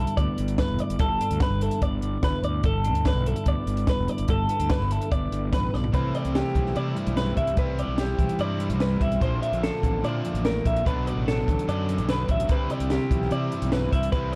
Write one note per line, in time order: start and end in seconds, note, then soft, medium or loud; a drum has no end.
0.00 0.39 G2 medium
0.00 1.41 D3 medium
0.00 1.21 D4 medium
0.00 1.63 E4 medium
0.00 0.17 A4 medium
0.07 closed hi-hat medium
0.17 0.27 D2 medium
0.17 1.82 B3 medium
0.17 0.59 D5 medium
0.17 kick loud
0.17 closed hi-hat medium
0.38 0.56 G1 medium
0.38 1.00 G2 medium
0.38 closed hi-hat medium
0.48 closed hi-hat medium
0.58 0.80 B4 medium
0.58 kick loud
0.58 snare loud
0.58 closed hi-hat medium
0.70 0.78 E1 medium
0.79 1.00 D5 medium
0.79 closed hi-hat medium
0.90 0.99 G1 medium
0.90 closed hi-hat medium
0.99 1.17 G1 loud
0.99 2.02 G2 medium
0.99 1.42 A4 medium
0.99 kick loud
0.99 closed hi-hat medium
1.21 2.85 D4 medium
1.21 closed hi-hat medium
1.31 1.40 D2 medium
1.31 closed hi-hat medium
1.40 3.04 D3 medium
1.40 1.62 B4 medium
1.40 kick loud
1.40 snare loud
1.40 closed hi-hat medium
1.50 1.68 G1 medium
1.61 3.26 E4 medium
1.61 1.82 A4 medium
1.61 closed hi-hat medium
1.71 closed hi-hat medium
1.81 2.16 G1 medium
1.81 3.46 B3 medium
1.81 2.24 D5 medium
1.81 kick loud
1.81 closed hi-hat medium
2.02 2.63 G2 medium
2.02 closed hi-hat medium
2.23 2.32 G1 medium
2.23 2.44 B4 medium
2.23 kick loud
2.23 snare medium
2.23 closed hi-hat medium
2.43 2.61 D2 loud
2.43 2.65 D5 medium
2.43 closed hi-hat medium
2.63 2.94 G1 medium
2.63 3.66 G2 medium
2.63 3.06 A4 medium
2.63 kick loud
2.63 closed hi-hat medium
2.84 4.50 D4 medium
2.84 closed hi-hat medium
2.94 3.12 D2 medium
2.94 closed hi-hat medium
3.05 4.70 D3 medium
3.05 3.27 B4 medium
3.05 kick loud
3.05 snare loud
3.05 closed hi-hat medium
3.15 3.33 B1 medium
3.26 4.90 E4 medium
3.26 3.47 A4 medium
3.26 closed hi-hat medium
3.36 closed hi-hat medium
3.46 3.55 D2 medium
3.46 4.50 B3 medium
3.46 3.89 D5 medium
3.46 kick loud
3.46 closed hi-hat medium
3.66 3.84 G1 medium
3.66 4.26 G2 medium
3.66 closed hi-hat medium
3.77 closed hi-hat medium
3.87 4.09 B4 medium
3.87 kick loud
3.87 snare loud
3.87 closed hi-hat medium
3.98 4.07 E1 medium
4.08 4.29 D5 medium
4.08 closed hi-hat medium
4.18 4.28 G1 medium
4.18 closed hi-hat medium
4.28 4.46 G1 loud
4.28 5.32 G2 medium
4.28 4.71 A4 medium
4.28 kick loud
4.28 closed hi-hat medium
4.49 4.60 B3 medium
4.49 closed hi-hat medium
4.60 4.68 D2 medium
4.60 5.93 D4 soft
4.60 closed hi-hat medium
4.70 5.95 D3 medium
4.70 4.92 B4 medium
4.70 kick loud
4.70 snare loud
4.70 closed hi-hat medium
4.80 4.98 G1 medium
4.80 snare soft
4.91 5.96 E4 medium
4.91 5.12 A4 medium
4.91 closed hi-hat medium
5.01 closed hi-hat medium
5.12 5.29 G1 medium
5.12 5.92 B3 medium
5.12 5.53 D5 medium
5.12 kick loud
5.12 closed hi-hat medium
5.32 5.50 G1 medium
5.32 5.92 G2 medium
5.32 closed hi-hat medium
5.53 5.71 A1 medium
5.53 5.74 B4 medium
5.53 kick loud
5.53 snare medium
5.53 closed hi-hat medium
5.74 5.92 B1 medium
5.74 5.94 D5 medium
5.74 snare medium
5.84 floor tom medium
5.93 6.11 C2 medium
5.93 6.74 C3 medium
5.93 6.55 C3 medium
5.93 6.55 E3 medium
5.93 6.76 G3 medium
5.93 7.81 A3 medium
5.93 6.78 C4 loud
5.93 6.78 E4 loud
5.93 6.15 B4 medium
5.93 kick loud
5.93 closed hi-hat medium
5.98 6.15 E4 medium
6.15 6.76 G4 medium
6.15 6.35 D5 medium
6.15 closed hi-hat medium
6.25 6.42 C2 medium
6.25 closed hi-hat medium
6.35 6.76 G4 medium
6.35 snare loud
6.35 closed hi-hat medium
6.54 6.72 B1 medium
6.54 8.18 E3 medium
6.54 kick medium
6.54 closed hi-hat medium
6.66 snare soft
6.75 7.56 C3 medium
6.75 6.93 C3 loud
6.75 7.57 G3 medium
6.75 7.59 C4 medium
6.75 7.38 E4 medium
6.75 7.61 E4 medium
6.75 7.17 D5 medium
6.75 closed hi-hat medium
6.95 7.55 G2 medium
6.95 closed hi-hat medium
7.07 7.32 B1 loud
7.07 closed hi-hat medium
7.17 7.37 B4 medium
7.17 snare medium
7.17 closed hi-hat medium
7.37 7.54 C2 medium
7.37 7.78 E4 medium
7.37 7.58 E5 medium
7.37 kick medium
7.37 closed hi-hat soft
7.47 closed hi-hat medium
7.57 7.83 C2 medium
7.57 8.38 C3 medium
7.57 8.39 G3 loud
7.57 8.41 C4 loud
7.57 7.79 B4 medium
7.57 kick loud
7.57 closed hi-hat medium
7.62 8.42 E4 loud
7.78 8.39 G4 medium
7.78 7.99 D5 medium
7.78 closed hi-hat medium
7.88 8.14 B1 medium
7.98 8.40 G4 medium
7.98 snare loud
7.98 closed hi-hat medium
8.18 8.27 B1 medium
8.18 9.19 E3 medium
8.18 kick medium
8.18 closed hi-hat medium
8.29 closed hi-hat medium
8.39 8.71 G2 medium
8.39 9.20 C3 medium
8.39 9.21 G3 medium
8.39 9.21 C4 medium
8.39 9.00 E4 medium
8.39 9.22 E4 medium
8.39 8.81 D5 medium
8.39 closed hi-hat medium
8.59 9.19 G2 medium
8.59 closed hi-hat medium
8.69 8.96 C2 medium
8.69 closed hi-hat medium
8.80 9.01 B4 medium
8.80 snare medium
8.80 closed hi-hat medium
9.00 9.18 B1 medium
9.00 9.42 E4 medium
9.00 9.22 E5 medium
9.00 kick medium
9.00 closed hi-hat medium
9.12 closed hi-hat medium
9.21 9.38 A#1 medium
9.21 9.82 A#2 medium
9.21 10.02 A#2 medium
9.21 10.02 D3 medium
9.21 10.03 F3 medium
9.21 10.03 A#3 medium
9.21 9.62 C4 medium
9.21 9.42 C5 medium
9.21 kick loud
9.21 closed hi-hat medium
9.25 10.06 D4 medium
9.42 10.04 G4 medium
9.42 9.63 E5 medium
9.42 closed hi-hat medium
9.52 9.69 A#1 medium
9.52 closed hi-hat medium
9.63 10.83 C4 medium
9.63 10.04 A4 medium
9.63 snare loud
9.63 closed hi-hat medium
9.83 10.00 A1 medium
9.83 11.47 D3 medium
9.83 kick medium
9.83 closed hi-hat medium
10.03 10.84 A#2 medium
10.03 10.20 A#2 medium
10.03 10.84 D3 medium
10.03 10.85 F3 medium
10.03 10.85 A#3 medium
10.03 10.88 D4 medium
10.03 10.86 E4 medium
10.03 10.45 D5 medium
10.03 closed hi-hat medium
10.25 10.83 F2 medium
10.25 closed hi-hat medium
10.34 10.60 A1 loud
10.34 closed hi-hat medium
10.45 10.65 A2 medium
10.45 10.65 A#4 medium
10.45 snare loud
10.45 closed hi-hat soft
10.65 10.82 A#1 medium
10.65 10.86 A#2 medium
10.65 10.86 E5 medium
10.65 kick medium
10.65 closed hi-hat medium
10.76 closed hi-hat medium
10.85 11.12 B1 medium
10.85 11.66 B2 medium
10.85 11.47 B2 medium
10.85 11.66 F#3 medium
10.85 11.69 B3 loud
10.85 11.28 D4 medium
10.85 11.71 D4 loud
10.85 11.07 B4 loud
10.85 kick loud
10.85 closed hi-hat medium
11.07 11.68 F#4 medium
11.07 11.27 D5 medium
11.07 closed hi-hat medium
11.16 11.42 A1 medium
11.28 12.09 D4 medium
11.28 11.68 A4 medium
11.28 snare loud
11.28 closed hi-hat medium
11.47 11.56 A1 medium
11.47 13.10 D3 medium
11.47 kick medium
11.47 closed hi-hat medium
11.59 closed hi-hat medium
11.67 12.00 F#2 medium
11.67 12.47 B2 medium
11.67 12.48 F#3 medium
11.67 12.50 B3 medium
11.67 12.50 D4 medium
11.67 12.29 A4 medium
11.67 12.09 D5 medium
11.67 closed hi-hat medium
11.88 12.47 F#2 medium
11.88 closed hi-hat medium
11.98 12.24 B1 medium
11.98 closed hi-hat medium
12.09 12.53 D4 medium
12.09 12.29 B4 medium
12.09 snare medium
12.09 closed hi-hat medium
12.29 12.46 A1 medium
12.29 12.40 E4 medium
12.29 12.50 E5 medium
12.29 kick medium
12.29 closed hi-hat medium
12.40 12.49 F#4 soft
12.40 closed hi-hat medium
12.47 12.66 C2 medium
12.47 13.30 C3 loud
12.47 13.11 C3 medium
12.47 13.31 G3 medium
12.47 13.33 C4 loud
12.47 kick loud
12.47 closed hi-hat medium
12.52 13.34 E4 medium
12.52 12.71 B4 medium
12.70 13.32 G4 soft
12.70 12.91 D5 medium
12.70 closed hi-hat medium
12.80 12.97 C2 medium
12.80 closed hi-hat medium
12.90 13.31 G4 medium
12.90 snare loud
12.90 closed hi-hat medium
13.10 13.28 B1 medium
13.10 14.35 E3 medium
13.10 kick medium
13.10 closed hi-hat medium
13.22 snare soft
13.31 14.11 C3 medium
13.31 13.48 C3 loud
13.31 14.12 G3 medium
13.31 14.14 C4 medium
13.31 13.95 E4 medium
13.31 14.15 E4 medium
13.31 13.72 D5 medium
13.31 closed hi-hat medium
13.52 14.11 G2 medium
13.52 closed hi-hat medium
13.62 13.87 B1 medium
13.62 closed hi-hat medium
13.72 13.92 B4 medium
13.72 snare loud
13.72 closed hi-hat soft
13.92 14.09 C2 medium
13.92 14.34 E4 medium
13.92 14.12 E5 medium
13.92 kick medium
13.92 closed hi-hat medium
14.03 closed hi-hat medium
14.12 14.35 C2 medium
14.12 14.35 C3 medium
14.12 14.35 G3 medium
14.12 14.35 C4 medium
14.12 14.35 E4 loud
14.12 14.33 B4 medium
14.12 kick loud
14.12 closed hi-hat medium